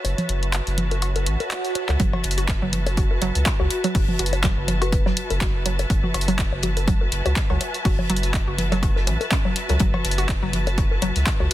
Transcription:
Already playing: F#4 B4 C#5 E5 A5
0.05 F#1, closed hi-hat, high bongo
0.18 closed hi-hat, low conga
0.29 F#1, closed hi-hat
0.43 closed hi-hat
0.53 clap, closed hi-hat
0.67 F#1, closed hi-hat
0.78 closed hi-hat, low conga
0.91 closed hi-hat, low bongo
1.02 closed hi-hat, cowbell, swell
1.16 closed hi-hat, low bongo
1.26 A1, closed hi-hat
1.40 closed hi-hat, low bongo
1.51 clap, closed hi-hat
1.65 closed hi-hat
1.75 closed hi-hat, high bongo
1.89 C#2, clap, closed hi-hat, high bongo, low bongo
1.99 F#1 F#3 B4, kick, closed hi-hat
2.13 cowbell, high bongo, low conga
2.23 F#1, closed hi-hat
2.31 closed hi-hat
2.38 F#4, closed hi-hat
2.48 kick, snare, clap, closed hi-hat, high bongo
2.62 F#1 F#3
2.73 closed hi-hat, low conga
2.87 closed hi-hat, high bongo, low bongo
2.97 F#4, kick, closed hi-hat
3.11 low bongo
3.21 F#1 F#3, closed hi-hat, high bongo
3.35 C#2, closed hi-hat
3.46 kick, snare, clap, closed hi-hat, cowbell
3.60 C#2 F#4, high bongo, low bongo
3.71 F#4, closed hi-hat
3.84 F#3 F#4, closed hi-hat
3.95 F#1, kick, closed hi-hat, open hi-hat, high bongo
4.08 low conga
4.19 F#1 F#4, closed hi-hat
4.26 closed hi-hat
4.33 closed hi-hat, high bongo
4.44 F#3, kick, snare, clap, closed hi-hat
4.57 F#1
4.68 closed hi-hat, high bongo, low conga
4.82 F#4 B4, closed hi-hat, cowbell, low bongo
4.92 B4, kick, closed hi-hat
5.06 F#3, snare, high bongo
5.17 closed hi-hat
5.30 F#1, closed hi-hat, low bongo
5.41 F#4, kick, snare, clap, closed hi-hat, high bongo
5.65 F#3, closed hi-hat
5.79 closed hi-hat, high bongo, low bongo
5.90 F#1, kick, closed hi-hat
6.04 F#4, low conga
6.14 F#1, closed hi-hat, cowbell, high bongo
6.21 closed hi-hat
6.28 F#3, closed hi-hat
6.39 kick, snare, clap, closed hi-hat
6.52 F#1, high bongo
6.62 F#4, closed hi-hat, low conga
6.77 closed hi-hat, low bongo
6.87 F#3, kick, closed hi-hat, high bongo
7.01 low bongo
7.12 F#1, closed hi-hat
7.26 C#2 F#4, closed hi-hat, high bongo
7.36 kick, snare, clap, closed hi-hat
7.50 C#2 F#3, cowbell, low bongo
7.61 closed hi-hat, high bongo
7.74 closed hi-hat
7.85 F#1 F#4, kick, closed hi-hat, open hi-hat
7.99 high bongo, low conga
8.09 F#1 F#3, closed hi-hat
8.16 closed hi-hat
8.23 closed hi-hat
8.34 kick, snare, clap, closed hi-hat, high bongo
8.48 F#1 F#4
8.58 closed hi-hat, low conga
8.72 F#3, closed hi-hat, high bongo, low bongo
8.83 kick, closed hi-hat, cowbell
8.96 snare, low bongo
9.07 A1 E3, closed hi-hat, high bongo
9.21 closed hi-hat, low bongo
9.31 C#4, kick, snare, clap, closed hi-hat
9.45 F#3, high bongo
9.56 closed hi-hat
9.69 C#2 F#3, closed hi-hat, low bongo
9.79 F#1 F#3, kick, closed hi-hat
9.94 cowbell, high bongo, low conga
10.05 F#1, closed hi-hat
10.11 closed hi-hat
10.18 F#4, closed hi-hat
10.28 kick, snare, clap, closed hi-hat, high bongo
10.43 F#1 F#3
10.53 closed hi-hat, low conga
10.67 closed hi-hat, high bongo, low bongo
10.78 F#4, kick, closed hi-hat
10.91 low bongo
11.02 F#1 F#3, closed hi-hat, high bongo
11.16 C#2, closed hi-hat
11.26 kick, snare, clap, closed hi-hat, cowbell
11.40 C#2 F#4, high bongo, low bongo

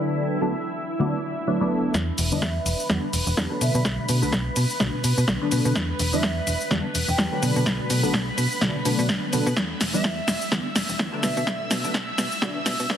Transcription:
Already playing: D3 F#3 A3 B3 D4 E4 E5
0.41 D3 F#3 A3 B3 D4
0.99 D3 F#3 A3 B3 D4
1.47 D3 F#3 A3 B3 D4
1.60 D3 F#3 A3 B3 D4
1.94 E2 B4 B5, kick, snare, shaker
2.18 E1, open hi-hat, shaker
2.32 E2 D3 E3 G3 B3 D4 E5, shaker
2.42 E2, kick, snare, shaker
2.66 E1, open hi-hat, shaker
2.80 shaker
2.90 E2 D3 E3 G3 B3 D4, kick, snare, shaker
3.13 E1, open hi-hat, shaker
3.27 E1, shaker
3.37 E2 D3 E3 G3 B3 D4, kick, snare, shaker
3.50 D3 F#3 A3 B3 D4
3.61 B2 E5, open hi-hat, shaker
3.75 B2, shaker
3.85 B1, kick, snare, shaker
3.99 B2
4.09 B2, open hi-hat, shaker
4.22 B1 D3 F#3 A3 B3 D4, shaker
4.32 B1, kick, snare, shaker
4.56 B2, open hi-hat, shaker
4.70 shaker
4.80 B1 D3 F#3 A3 B3 D4, kick, snare, shaker
4.94 B2
5.04 B2, open hi-hat, shaker
5.17 B2, shaker
5.27 B1 D3 F#3 A3 B3 D4, kick, snare, shaker
5.41 D3 F#3 A3 B3 D4
5.51 B2, open hi-hat, shaker
5.65 B2, shaker
5.75 E2, kick, snare, shaker
5.99 E1, open hi-hat, shaker
6.13 E2 D3 E3 G3 B3 D4 E5, shaker
6.23 E2, kick, snare, shaker
6.47 E1, open hi-hat, shaker
6.61 shaker
6.71 E2 D3 E3 G3 B3 D4, kick, snare, shaker
6.95 E1, open hi-hat, shaker
7.08 E1 G5, shaker
7.18 E2 D3 E3 G3 B3 D4, kick, snare, shaker
7.31 D3 F#3 A3 B3 D4
7.42 B2, open hi-hat, shaker
7.56 B2, shaker
7.66 B1, kick, snare, shaker
7.80 B2
7.90 B2, open hi-hat, shaker
8.03 B1 D3 F#3 A3 B3 D4, shaker
8.14 B1, kick, snare, shaker
8.38 B2, open hi-hat, shaker
8.51 shaker
8.61 B1 D3 F#3 A3 B3 D4, kick, snare, shaker
8.75 B2
8.85 B2 D3 F#3 A3 B3 D4, open hi-hat, shaker
8.99 B2, shaker
9.09 B1, kick, snare, shaker
9.32 B2 D3 F#3 A3 B3 D4, open hi-hat, shaker
9.46 B2, shaker
9.56 E2 E5 E6, kick, snare, shaker
9.81 E1, snare, open hi-hat, shaker
9.93 E2 D3 E3 G3 B3 D4 E5, shaker
10.04 E2, kick, snare, shaker
10.28 E1, snare, open hi-hat, shaker
10.41 shaker
10.51 E2 D3 E3 G3 B3 D4, kick, snare, shaker
10.76 E1, snare, open hi-hat, shaker
10.89 E1, shaker
10.99 E2 D3 E3 G3 B3 D4, kick, snare, shaker
11.12 D3 F#3 A3 B3 D4
11.23 B2 E5, snare, open hi-hat, shaker
11.37 B2, shaker
11.47 B1, kick, snare, shaker
11.61 B2
11.71 B2, snare, open hi-hat, shaker
11.84 B1 D3 F#3 A3 B3 D4, shaker
11.94 B1, kick, snare, shaker
12.18 B2, snare, open hi-hat, shaker
12.32 shaker
12.42 B1 D3 F#3 A3 B3 D4, kick, snare, shaker
12.56 B2
12.66 B2, snare, open hi-hat, shaker
12.79 B2, shaker
12.89 B1 D3 F#3 A3 B3 D4, kick, snare, shaker

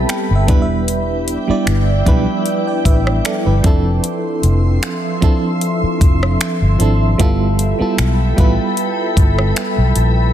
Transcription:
Already playing: G3 B3 C4 E4 G4 A4 B4 E5 G5 A5 B5
0.09 G5, finger snap, closed hi-hat
0.31 G1
0.35 E5
0.47 E1 G3 B3 D4 E4 B4 D5 G5, kick, closed hi-hat
0.62 E5
0.88 closed hi-hat
1.28 closed hi-hat
1.48 G3 B3 D4 E4 D5, muted fingered electric bass stroke
1.67 G1, finger snap, closed hi-hat
2.05 B1 F3 B3 D4 E4 B4, kick, closed hi-hat
2.12 G3
2.46 closed hi-hat
2.67 D5 G5
2.85 A1 B4 E5, kick, closed hi-hat
3.07 cross-stick
3.25 A4 D5, finger snap, closed hi-hat
3.46 G1 E4 B4
3.63 F3 C4 D4 E4 A4 E5 C6, kick, closed hi-hat
4.04 closed hi-hat
4.43 F1, closed hi-hat
4.83 finger snap, closed hi-hat
5.21 F3 C4 D4 E4 A4, kick, closed hi-hat
5.61 closed hi-hat
5.83 muted fingered electric bass stroke
6.01 F1, kick, closed hi-hat
6.23 cross-stick
6.41 finger snap, closed hi-hat
6.62 G1
6.79 G#1 F3 C4 D4 E4 A4, closed hi-hat
7.18 G1 G3 B3 E4 F4 A4 G5 B5, kick, closed hi-hat
7.59 closed hi-hat
7.79 G3 B3 E4 F4 A4, muted fingered electric bass stroke
7.98 B1, finger snap, closed hi-hat
8.36 A1 G3 B3 E4 F4 B4, kick, closed hi-hat
8.77 closed hi-hat
9.17 G1, kick, closed hi-hat
9.39 cross-stick
9.56 finger snap, closed hi-hat
9.78 B1
9.96 A#1, closed hi-hat

